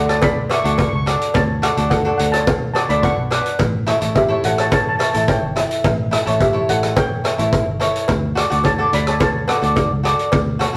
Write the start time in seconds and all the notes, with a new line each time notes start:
Already playing: D2 D4 F#4 A4
0.09 C#5 A5, cross-stick, closed hi-hat
0.22 D5 B5, kick, closed hi-hat, cowbell
0.50 D4 F#4 A4 E5 C#6, cross-stick, closed hi-hat, cowbell
0.59 C#6
0.64 D2 D4 F#4 A4 C#6, closed hi-hat
0.73 C#6
0.78 C#6, kick, closed hi-hat, cowbell
0.87 C#6
0.93 C#2 C#6
1.06 D4 F#4 A4, cross-stick, closed hi-hat
1.22 closed hi-hat
1.34 D2 C#5 A5, kick, closed hi-hat, cowbell
1.62 D4 F#4 A4 F#5, cross-stick, closed hi-hat
1.77 D2 D4 F#4 A4, closed hi-hat
1.90 A4 F#5, kick, closed hi-hat, cowbell
2.05 D4 F#4 A4
2.18 D2 A4 F#5, closed hi-hat
2.32 C#5 A5, cross-stick, closed hi-hat
2.47 kick, closed hi-hat, cowbell
2.74 D4 F#4 A4 C#5 A5, cross-stick, closed hi-hat, cowbell
2.89 D2 D4 F#4 A4 D5 B5, closed hi-hat
3.03 F#5 C#6, kick, closed hi-hat, cowbell
3.17 B1
3.30 D4 F#4 B4, cross-stick, closed hi-hat, cowbell
3.46 closed hi-hat
3.59 A1, kick, closed hi-hat, cowbell
3.87 E4 A4 C#5, cross-stick, closed hi-hat
4.01 A1 E4 A4 C#5, closed hi-hat
4.15 G4 E5, kick, closed hi-hat, cowbell
4.28 E4 A4 C#5
4.44 A1 A4 F#5, closed hi-hat
4.58 C#5 A5, cross-stick, closed hi-hat
4.72 C#5 A5, kick, closed hi-hat, cowbell
4.81 A5
4.89 A5
4.96 E4 A5, cowbell
5.00 A4 C#5 A5, cross-stick, closed hi-hat
5.10 E4 A5
5.14 A1 A4 C#5 A5, closed hi-hat
5.28 C#5 G5, kick, closed hi-hat, cowbell
5.43 G1
5.56 E4 A4 E5, cross-stick, closed hi-hat
5.71 closed hi-hat
5.84 A1, kick, closed hi-hat, cowbell
6.11 E4 A4 E5, cross-stick, closed hi-hat
6.26 A1 E4 A4 C#5, closed hi-hat
6.41 G4 E5, kick, closed hi-hat, cowbell
6.53 E4 A4 C#5
6.69 A1 A4 F#5, closed hi-hat
6.83 cross-stick, closed hi-hat
6.96 C#5 G5, kick, closed hi-hat, cowbell
7.24 E4 A4 C#5, cross-stick, closed hi-hat, cowbell
7.38 A1 E4 A4 C#5, closed hi-hat
7.53 kick, closed hi-hat, cowbell
7.67 G1
7.80 E4 A4 C#5, closed hi-hat, cowbell
7.96 closed hi-hat
8.08 D2, kick, closed hi-hat, cowbell
8.35 F#4 A4 D5, cross-stick, closed hi-hat
8.50 D2 F#4 A4 D5, closed hi-hat
8.64 C#5 A5, kick, closed hi-hat, cowbell
8.78 F#4 A4 D5
8.93 D2 D5 B5, closed hi-hat
9.07 C#5 A5, cross-stick, closed hi-hat
9.20 C#5 A5, kick, closed hi-hat, cowbell
9.48 F#4 A4 D5 F#5, cross-stick, closed hi-hat, cowbell
9.62 D2 F#4 A4 D5, closed hi-hat
9.76 kick, closed hi-hat, cowbell
9.91 C#2
10.03 F#4 A4 D5, cross-stick, closed hi-hat
10.19 closed hi-hat
10.32 D2, kick, closed hi-hat, cowbell
10.59 F#4 A4 C#5, cross-stick, closed hi-hat
10.73 F#4